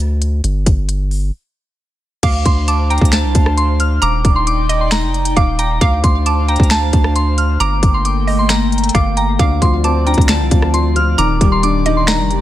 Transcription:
Already playing: 808-style bass D2
0.22 closed hi-hat
0.44 808-style bass G1, closed hi-hat
0.66 808-style bass G1, kick, closed hi-hat
0.89 closed hi-hat
1.11 open hi-hat
2.23 808-style bass D2, analog synth pad D4 C5 F5, synth pluck F5, synth bell D6, kick, closed hi-hat, crash
2.45 808-style bass D2, synth bell C6, kick, closed hi-hat
2.68 synth pluck A5, synth bell D6, closed hi-hat
2.90 synth pluck G5, synth bell A#5, closed hi-hat
2.98 808-style bass D2, kick, closed hi-hat
3.05 closed hi-hat
3.12 synth pluck A5, synth bell A5, finger snap, snare, closed hi-hat
3.24 808-style bass C2
3.35 808-style bass D2, kick, closed hi-hat
3.46 cross-stick
3.57 synth bell C6, closed hi-hat
3.80 synth bell F6, closed hi-hat
4.02 808-style bass D#1, analog synth pad D#4 D5 G5, synth pluck A#5, synth bell D6, closed hi-hat
4.25 808-style bass D#1, kick, closed hi-hat
4.36 synth bell C6
4.47 synth bell D6, closed hi-hat
4.69 synth pluck D#5, closed hi-hat
4.81 synth bell C6
4.91 synth bell A#5, finger snap, snare, closed hi-hat
5.03 808-style bass F1
5.14 closed hi-hat
5.25 closed hi-hat
5.36 808-style bass D#1, synth pluck F5, synth bell D6, kick, closed hi-hat
5.59 synth pluck G5, synth bell A#5, closed hi-hat
5.81 808-style bass D2, analog synth pad D4 C5 F5, synth pluck F5, synth bell D6, kick, closed hi-hat
6.04 808-style bass D2, synth bell C6, kick, closed hi-hat
6.26 synth pluck A5, synth bell D6, closed hi-hat
6.48 synth pluck G5, synth bell A#5, closed hi-hat
6.56 808-style bass D2, kick, closed hi-hat
6.63 closed hi-hat
6.70 synth pluck A5, synth bell A5, finger snap, snare, closed hi-hat
6.93 808-style bass D2, kick, closed hi-hat
7.04 cross-stick
7.16 synth bell C6, closed hi-hat
7.38 synth bell F6, closed hi-hat
7.60 808-style bass G1, analog synth pad A3 A#3 G5, synth pluck A#5, synth bell D6, closed hi-hat
7.83 808-style bass G1, kick, closed hi-hat
7.94 synth bell C6
8.05 synth bell D6, closed hi-hat
8.27 synth pluck D#5, open hi-hat
8.39 synth bell C6
8.49 synth bell A#5, finger snap, snare, closed hi-hat
8.72 closed hi-hat
8.78 closed hi-hat
8.84 closed hi-hat
8.89 closed hi-hat
8.95 808-style bass G1, synth pluck F5, synth bell D6, kick, cross-stick, closed hi-hat
9.17 synth pluck G5, synth bell A#5, closed hi-hat
9.39 808-style bass D2, felt piano D3, analog synth pad C4 F4 D5, synth pluck F5, synth bell D6, kick, closed hi-hat
9.62 808-style bass D2, felt piano F3, synth bell C6, kick, closed hi-hat
9.84 felt piano C4, synth pluck A5, synth bell D6, closed hi-hat
10.06 felt piano D4, synth pluck G5, synth bell A#5, closed hi-hat
10.14 808-style bass D2, kick, closed hi-hat
10.21 closed hi-hat
10.28 felt piano D3, synth pluck A5, synth bell A5, finger snap, snare, closed hi-hat
10.40 808-style bass C2
10.51 808-style bass D2, felt piano F3, kick, closed hi-hat
10.62 cross-stick
10.74 felt piano F3, synth bell C6, closed hi-hat
10.96 felt piano F3, synth bell F6, closed hi-hat
11.18 808-style bass D#1, felt piano D#3, analog synth pad D#3 G3 D5, synth pluck A#5, synth bell D6, closed hi-hat
11.41 808-style bass D#1, felt piano G3, kick, closed hi-hat
11.52 synth bell C6
11.63 felt piano D4, synth bell D6, closed hi-hat
11.86 felt piano D#4, synth pluck D#5, closed hi-hat
11.97 synth bell C6
12.07 felt piano D#3, synth bell A#5, finger snap, snare, closed hi-hat
12.19 808-style bass F1
12.30 felt piano G3, closed hi-hat

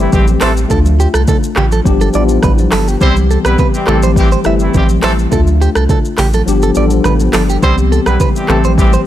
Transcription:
Already playing: tine electric piano E3 G3 A3 C4 G4
0.13 sub bass A1, horn section E3 G3 C4 G4, kick, high conga, low conga, shaker
0.27 high conga, shaker
0.41 sub bass A1, horn section E3 A3 C4 A4, clean electric guitar C5, cross-stick, clap, open hi-hat, high conga
0.57 shaker
0.69 sub bass D2, tine electric piano A3 D4 F4, clean electric guitar A4, kick, low conga, shaker
0.86 high conga, shaker
1.00 clean electric guitar G4, shaker
1.14 sub bass C2, clean electric guitar A4, cross-stick, shaker
1.28 clean electric guitar A4, kick, low conga, shaker
1.43 shaker
1.56 sub bass A1, clean electric guitar G4, cross-stick, clap, low conga
1.72 clean electric guitar A4, high conga, shaker
1.84 sub bass G1, tine electric piano F3 G3 B3 D4 G4, kick, shaker
2.01 clean electric guitar A4, high conga, shaker
2.13 sub bass A1, tine electric piano F3 G3 B3 D4 E4, clean electric guitar D5, shaker
2.29 shaker
2.43 sub bass A1, clean electric guitar B4, kick, cross-stick, high conga, low conga, shaker
2.58 high conga, shaker
2.72 sub bass G1, clean electric guitar A4, cross-stick, clap, open hi-hat, high conga
2.88 clean electric guitar G4, shaker
3.00 sub bass C2, tine electric piano E3 G3 B3 C4 G4, horn section G3 C4 E4 C5, clean electric guitar C5, kick, low conga, shaker
3.16 high conga, shaker
3.31 clean electric guitar A4, shaker
3.45 sub bass B1, horn section G3 B3 E4 B4, clean electric guitar B4, cross-stick, shaker
3.59 clean electric guitar B4, kick, low conga, shaker
3.74 horn section E3 G3 C4 G4, shaker
3.86 sub bass A1, tine electric piano E3 G3 A3 C4 G4, horn section E3 A3 C4 A4, clean electric guitar A4, cross-stick, clap, low conga
4.03 clean electric guitar C5, high conga, shaker
4.16 horn section E3 G3 C4 G4, kick, shaker
4.32 clean electric guitar C5, high conga, shaker
4.44 sub bass G1, tine electric piano E3 G3 A3 C4 E4, clean electric guitar E5, cross-stick, shaker
4.60 horn section C3 E3 A3 E4, shaker
4.74 sub bass A1, horn section E3 G3 C4 G4, kick, high conga, low conga, shaker
4.89 high conga, shaker
5.03 sub bass A1, horn section E3 A3 C4 A4, clean electric guitar C5, cross-stick, clap, open hi-hat, high conga
5.19 shaker
5.31 sub bass D2, tine electric piano A3 D4 F4, clean electric guitar A4, kick, low conga, shaker
5.47 high conga, shaker
5.62 clean electric guitar G4, shaker
5.75 sub bass C2, clean electric guitar A4, cross-stick, shaker
5.89 clean electric guitar A4, kick, low conga, shaker
6.05 shaker
6.18 sub bass A1, clean electric guitar G4, cross-stick, clap, open hi-hat, low conga, shaker
6.33 clean electric guitar A4, high conga, shaker
6.46 sub bass G1, tine electric piano F3 G3 B3 D4 G4, shaker
6.62 clean electric guitar A4, high conga, shaker
6.75 sub bass A1, tine electric piano F3 G3 B3 D4 A4, clean electric guitar D5, shaker
6.90 shaker
7.04 sub bass A1, clean electric guitar B4, cross-stick, high conga, low conga, shaker
7.20 high conga, shaker
7.33 sub bass G1, clean electric guitar A4, cross-stick, clap, open hi-hat, high conga, shaker
7.50 clean electric guitar G4, shaker
7.61 sub bass C2, tine electric piano E3 G3 B3 C4 G4, horn section G3 C4 E4 C5, clean electric guitar C5, kick, low conga, shaker
7.78 high conga, shaker
7.92 clean electric guitar A4, shaker
8.06 sub bass B1, horn section G3 B3 E4 B4, clean electric guitar B4, cross-stick, shaker
8.20 clean electric guitar B4, kick, low conga, shaker
8.35 horn section E3 G3 C4 G4, shaker
8.48 sub bass A1, tine electric piano E3 G3 A3 C4 G4, horn section E3 A3 C4 A4, clean electric guitar A4, cross-stick, clap, low conga
8.64 clean electric guitar C5, high conga, shaker
8.78 horn section E3 G3 C4 G4, kick, shaker
8.93 clean electric guitar C5, high conga, shaker

